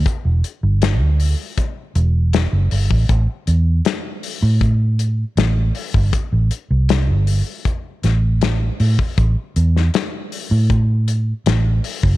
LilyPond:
<<
  \new Staff \with { instrumentName = "Fingered electric bass" } { \clef bass \time 4/4 \key e \minor \tempo 4 = 79 r16 e,,16 r16 g,,8 d,8 r8. e,,8. fis,,16 g,,16 a,,16 | a,,16 r16 e,8 r8. a,4~ a,16 a,,8 r16 g,,16 | r16 a,,16 r16 c,8 g,,8 r8. a,,4 a,16 r16 | a,,16 r16 e,8 r8. a,4~ a,16 a,,8 r16 fis,,16 | }
  \new DrumStaff \with { instrumentName = "Drums" } \drummode { \time 4/4 <hh bd>8 hh8 <hh sn>8 hho8 <hh bd>8 hh8 <hh sn>8 hho16 bd16 | <hh bd>8 hh8 <hh sn>8 hho8 <hh bd>8 hh8 <hh sn>8 hho16 bd16 | <hh bd>8 hh8 <hh sn>8 hho8 <hh bd>8 <hh sn>8 <hh sn>8 hho16 bd16 | <hh bd>8 hh16 sn16 <hh sn>8 hho8 <hh bd>8 hh8 <hh sn>8 hho16 bd16 | }
>>